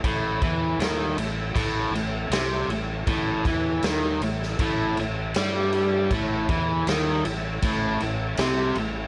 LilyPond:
<<
  \new Staff \with { instrumentName = "Tonewheel organ" } { \time 4/4 \key a \mixolydian \tempo 4 = 79 <a' cis'' e''>1 | <a' cis'' e''>1 | <a' cis'' e''>1 | }
  \new Staff \with { instrumentName = "Overdriven electric guitar" } { \clef bass \time 4/4 \key a \mixolydian a,8 e8 dis8 a,8 a,8 a,8 c8 a,8 | a,8 e8 dis8 a,8 a,8 a,8 g4 | a,8 e8 dis8 a,8 a,8 a,8 c8 a,8 | }
  \new Staff \with { instrumentName = "Fingered electric bass" } { \clef bass \time 4/4 \key a \mixolydian a,,8 e,8 dis,8 a,,8 a,,8 a,,8 c,8 a,,8 | a,,8 e,8 dis,8 a,,8 a,,8 a,,8 g,4 | a,,8 e,8 dis,8 a,,8 a,,8 a,,8 c,8 a,,8 | }
  \new DrumStaff \with { instrumentName = "Drums" } \drummode { \time 4/4 <cymc bd>8 <cymc bd>8 <cymc sn>8 cymc8 <cymc bd>8 cymc8 <cymc sn>8 cymc8 | <cymc bd>8 <cymc bd>8 <cymc sn>8 cymc16 sn16 <cymc bd>8 cymc8 <cymc sn>8 cymc8 | <cymc bd>8 <cymc bd>8 <cymc sn>8 cymc8 <cymc bd>8 cymc8 <cymc sn>8 cymc8 | }
>>